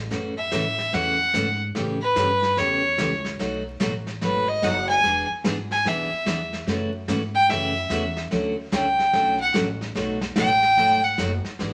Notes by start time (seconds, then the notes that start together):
Already playing: A1
0.10 F#2 C#3 E3 A3 C#4 F#4, brush sweep, snare
0.38 E5
0.51 A2 C#3 E3 A3 C#4 F#4, snare, hi-hat pedal
0.78 snare
0.93 E2 C#3 E3 A3 C#4 F#4 F#5, brush sweep, snare
1.34 G#2 C#3 E3 A3 C#4 F#4, snare, hi-hat pedal
1.75 A2 C#3 E3 A3 C#4 G4, brush sweep, snare
2.02 B4
2.16 G2 C#3 E3 A3 C#4 G4, snare, hi-hat pedal
2.42 snare
2.57 E2 C#3 E3 A3 C#4 G4 C#5, brush sweep, snare
2.98 C#2 C#3 E3 A3 C#4 G4, snare, hi-hat pedal
3.25 snare
3.39 B1 B2 F#3 A3 D#4 F#4, brush sweep, snare
3.80 A1 B2 F#3 A3 D#4 F#4, snare, hi-hat pedal
4.07 snare
4.21 G#1 B2 F#3 A3 D#4 F#4 B4, brush sweep, snare
4.48 D#5
4.62 F#1 B2 F#3 A3 D#4 F#4 F#5, snare, hi-hat pedal
4.89 G#5, snare
5.04 E1 E3 B3 D4 G#4, brush sweep, snare
5.30 muted upright bass stroke
5.44 G#1 E3 B3 D4 G#4, snare, hi-hat pedal
5.71 G#5, snare
5.85 B1 E3 B3 D4 G#4 E5, brush sweep, snare
6.11 muted upright bass stroke
6.25 E2 E3 B3 D4 G#4, snare, hi-hat pedal
6.53 snare
6.67 F#2 C#3 E3 A3 C#4 F#4, brush sweep, snare
7.08 G#2 C#3 E3 A3 C#4 F#4, snare, hi-hat pedal
7.35 G5
7.49 F#2 C#3 E3 A3 C#4 F#4 E5, brush sweep, snare
7.89 E2 C#3 E3 A3 C#4 F#4, snare, hi-hat pedal
8.17 snare
8.31 D2 D3 F#3 A3 C#4 F#4, brush sweep, snare
8.72 C#2 D3 F#3 A3 C#4 F#4 G5, snare, hi-hat pedal
8.99 snare
9.13 B1 D3 F#3 A3 C#4 F#4, brush sweep, snare
9.40 F#5
9.54 A1 D3 F#3 A3 C#4 F#4, snare, hi-hat pedal
9.81 snare
9.95 B1 B2 F#3 A3 D#4 F#4, brush sweep, snare
10.21 snare
10.36 A1 B2 F#3 A3 D#4 F#4 G5, snare, hi-hat pedal
10.62 snare
10.77 G#1 B2 F#3 A3 D#4 F#4, brush sweep, snare
11.04 F#5
11.18 F#1 B2 F#3 A3 D#4 F#4, snare, hi-hat pedal
11.44 muted upright bass stroke, snare
11.59 G#1 E3 B3 D4 G#4, brush sweep, snare